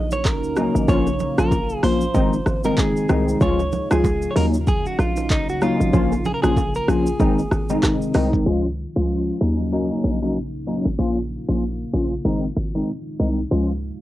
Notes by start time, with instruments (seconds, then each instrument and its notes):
Already playing: 808-style bass A#1, ambient pad C#3 F#3 A#3 D#4, clean electric guitar D#5
0.11 clean electric guitar C#5, low bongo, shaker
0.25 clean electric guitar A#4, kick, clap, high bongo, shaker
0.43 808-style bass C#2, shaker
0.56 tine electric piano F#3 A#3 C#4 D#4, cross-stick, low bongo, shaker
0.75 808-style bass G#1, shaker
0.88 808-style bass A#1, tine electric piano F3 A#3 C#4 F4, ambient pad F3 F4, clean electric guitar C#5, kick, low conga, shaker
1.07 high bongo, shaker
1.19 low bongo, low conga, shaker
1.38 808-style bass A#1, tine electric piano F3 A#3 C#4 F4, clean electric guitar A#4, cross-stick, shaker
1.51 kick, high bongo, shaker
1.69 shaker
1.83 808-style bass A#1, tine electric piano F3 A#3 C#4 F4, clean electric guitar C5, cross-stick, open hi-hat, shaker
2.01 shaker
2.14 808-style bass G#1, ambient pad C3 D#3 G#3 D#4, tine electric piano D#3 G#3 C4 D#4, kick, low conga, shaker
2.33 shaker
2.46 808-style bass G#1, cross-stick, high bongo, shaker
2.64 tine electric piano D#3 G#3 C4 D#4, clean electric guitar A#4, low bongo, shaker
2.78 clean electric guitar G#4, kick, clap, high bongo, shaker
2.96 shaker
3.09 808-style bass C2, tine electric piano D#3 G#3 C4 D#4, cross-stick, low bongo, shaker
3.28 shaker
3.41 808-style bass C#2, ambient pad C#3, tine electric piano F3 G#3 C#4 F4, clean electric guitar C#5, kick, low conga, shaker
3.59 high bongo, shaker
3.72 low bongo, low conga, shaker
3.91 808-style bass C#2, tine electric piano F3 G#3 C#4 F4, clean electric guitar G#4, cross-stick, shaker
4.04 kick, high bongo, shaker
4.22 shaker
4.31 clean electric guitar C#5
4.35 808-style bass D#2, tine electric piano F#3 A#3 C#4 D#4, ambient pad F#3 A#3 D#4, clean electric guitar A#4, open hi-hat, shaker
4.54 shaker
4.67 clean electric guitar G#4, kick, low conga, shaker
4.86 clean electric guitar F#4, shaker
4.99 808-style bass A#1, clean electric guitar F4, cross-stick, high bongo, shaker
5.16 low bongo, shaker
5.30 clean electric guitar D#4, kick, clap, high bongo, shaker
5.49 808-style bass C#2, clean electric guitar F#4, shaker
5.61 tine electric piano F#3 A#3 C#4 D#4, clean electric guitar F4, cross-stick, low bongo, shaker
5.80 808-style bass G#1, shaker
5.93 808-style bass A#1, tine electric piano F3 A#3 C#4 F4, ambient pad F3 F4, kick, low conga, shaker
6.12 high bongo, shaker
6.25 clean electric guitar G#4, low bongo, low conga, shaker
6.34 clean electric guitar A#4
6.42 808-style bass A#1, tine electric piano F3 A#3 C#4 F4, clean electric guitar G#4, cross-stick, shaker
6.57 kick, high bongo, shaker
6.75 clean electric guitar A#4, shaker
6.88 808-style bass A#1, tine electric piano F3 A#3 C#4 F4, clean electric guitar G#4, cross-stick, shaker
7.06 shaker
7.20 808-style bass G#1, ambient pad C3 D#3 G#3 D#4, tine electric piano D#3 G#3 C4 D#4, kick, low conga, shaker
7.39 shaker
7.51 808-style bass G#1, cross-stick, high bongo, shaker
7.69 tine electric piano D#3 G#3 C4 D#4, low bongo, shaker
7.83 kick, cross-stick, clap, high bongo, shaker
8.02 shaker
8.14 808-style bass C2, tine electric piano D#3 G#3 C4 D#4, cross-stick, open hi-hat, low bongo, shaker
8.33 kick, shaker
8.46 808-style bass C#2, ambient pad C#3, tine electric piano F3 G#3 C#4 F4
8.96 808-style bass C#2, tine electric piano F3 G#3 C#4 F4
9.41 808-style bass D#2, tine electric piano F#3 A#3 C#4 D#4, ambient pad F#3 A#3 D#4
9.72 tine electric piano F#3 A#3 C#4 D#4
10.04 808-style bass A#1
10.22 tine electric piano F#3 A#3 C#4 D#4
10.54 808-style bass C#2
10.67 tine electric piano F#3 A#3 C#4 D#4
10.86 808-style bass G#1
10.99 808-style bass A#1, tine electric piano F3 A#3 C#4 F4, ambient pad F3 F4
11.48 808-style bass A#1, tine electric piano F3 A#3 C#4 F4
11.93 808-style bass A#1, tine electric piano F3 A#3 C#4 F4
12.25 808-style bass G#1, ambient pad C3 D#3 G#3 D#4, tine electric piano D#3 G#3 C4 D#4
12.57 808-style bass G#1
12.75 tine electric piano D#3 G#3 C4 D#4
13.20 808-style bass C2, tine electric piano D#3 G#3 C4 D#4
13.51 808-style bass C#2, ambient pad C#3, tine electric piano F3 G#3 C#4 F4